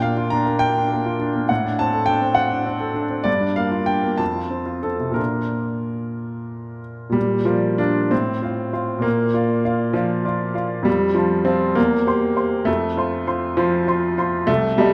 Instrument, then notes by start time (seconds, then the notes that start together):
grand piano
Already playing: A#2 D4 G5
0.02 A#3 F5
0.17 F4
0.30 D4 A#5
0.46 A#3
0.59 G5
0.77 D4
0.92 A#3
1.06 F4
1.20 D4
1.36 A#3
1.49 A2 F#5
1.64 D4
1.79 C4 A5
1.93 A4
2.06 D4 G5
2.22 C4
2.35 F#5
2.51 D4
2.66 C4
2.80 A4
2.94 D4
3.10 C4
3.24 G2 D5
3.40 D4
3.56 A#3 F5
3.71 F4
3.86 D4 G5
4.03 A#3
4.17 F2 A5
4.35 F4
4.51 C4
4.66 F4
4.83 C4 A4
4.99 C3
5.11 A#2 A#3 D4 F4 A#4
7.10 A#2 G3
7.45 F3 F4 A#4 D5
7.78 D4 F4 A#4 D5
8.11 A2 C4
8.42 F4 C5 F5
8.73 F4 C5 F5
8.99 A#2 A#3
9.34 F4 D5 F5
9.65 F4 D5 F5
9.93 F3 F4 D5 F5
10.25 F4 D5 F5
10.55 F4 D5 F5
10.83 F2 G3
11.14 F3 F4 C5 A5
11.45 C4 F4 C5 A5
11.75 E2 A#3
12.06 G4 C5 C6
12.36 G4 C5 C6
12.65 F2 A3
12.97 F4 C5 C6
13.27 F4 C5 C6
13.57 F3 F4 C5 C6
13.88 F4 C5 C6
14.18 F4 C5 C6
14.47 C2 A3
14.78 G3 G4 D#5 A5